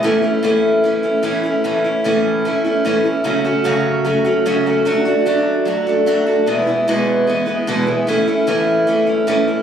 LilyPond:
\new Staff \with { instrumentName = "Steel-string acoustic guitar" } { \time 4/4 \key a \major \tempo 4 = 149 <a, e a cis' e'>8 <a cis' e'>8 <a, e a cis' e'>4 <e a cis' e'>8 <a cis' e'>8 <a, e a cis' e'>8 <a cis' e'>8 | <a, e a cis' e'>8 <a cis' e'>8 <a, e a cis' e'>4 <e a cis' e'>8 <a cis' e'>8 <a, e a cis' e'>8 <a cis' e'>8 | <fis, cis fis a cis' fis'>8 <fis a cis' fis'>8 <fis, cis fis a cis' fis'>4 <fis a cis' fis'>8 <fis a cis' fis'>8 <fis, cis fis a cis' fis'>8 <fis a cis' fis'>8 | <fis a d' fis'>8 <a d' fis'>8 <fis a d' fis'>4 <fis a d' fis'>8 <a d' fis'>8 <fis a d' fis'>8 <a d' fis'>8 |
<e, b, e gis b e'>8 <e gis b e'>8 <e, b, e gis b e'>4 <e gis b e'>8 <e gis b e'>8 <e, b, e gis b e'>8 <e gis b e'>8 | <a, e a cis' e'>8 <a cis' e'>8 <a, e a cis' e'>4 <e a cis' e'>8 <a cis' e'>8 <a, e a cis' e'>8 <a cis' e'>8 | }